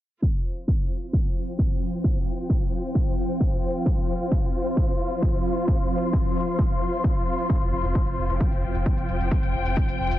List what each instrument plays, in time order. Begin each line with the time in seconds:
0.22 synth drone F3 C4, string section F4, kick
0.38 string section C5
0.57 closed hi-hat
0.68 kick
1.02 closed hi-hat
1.10 string section G5, kick
1.25 closed hi-hat
1.48 closed hi-hat
1.59 kick
1.70 closed hi-hat
1.81 closed hi-hat
1.93 closed hi-hat
2.04 kick
2.16 closed hi-hat
2.39 closed hi-hat
2.50 kick
2.61 closed hi-hat
2.84 closed hi-hat
2.95 kick
3.07 closed hi-hat
3.29 closed hi-hat
3.40 kick, closed hi-hat
3.52 closed hi-hat
3.63 closed hi-hat
3.75 closed hi-hat
3.86 kick, closed hi-hat
3.98 closed hi-hat
4.20 closed hi-hat
4.31 kick, closed hi-hat
4.43 closed hi-hat
4.66 closed hi-hat
4.74 string section C6, kick, closed hi-hat
4.88 closed hi-hat
5.11 closed hi-hat
5.22 kick, closed hi-hat
5.34 closed hi-hat
5.45 closed hi-hat
5.57 closed hi-hat
5.68 kick, closed hi-hat
5.79 closed hi-hat
6.02 closed hi-hat
6.13 kick, closed hi-hat
6.25 closed hi-hat
6.48 closed hi-hat
6.59 kick, closed hi-hat
6.70 closed hi-hat
6.93 closed hi-hat
7.04 kick, closed hi-hat
7.16 closed hi-hat
7.27 closed hi-hat
7.39 closed hi-hat
7.50 kick, closed hi-hat
7.61 sub bass F1, closed hi-hat
7.72 sub bass F1
7.84 sub bass F1, closed hi-hat
7.95 kick, closed hi-hat
8.07 sub bass F1, closed hi-hat
8.18 sub bass F1
8.29 sub bass F1, closed hi-hat
8.37 string section G5, kick, closed hi-hat
8.52 sub bass F1, closed hi-hat
8.63 sub bass F1
8.75 sub bass F1, closed hi-hat
8.86 kick, closed hi-hat
8.98 sub bass F1, closed hi-hat
9.09 sub bass F1, closed hi-hat
9.20 sub bass F1, closed hi-hat
9.31 kick, closed hi-hat
9.43 sub bass F1, closed hi-hat
9.54 sub bass F1
9.66 sub bass F1, closed hi-hat
9.77 kick, closed hi-hat
9.88 sub bass F1, closed hi-hat
10.00 sub bass F1
10.11 sub bass F1, closed hi-hat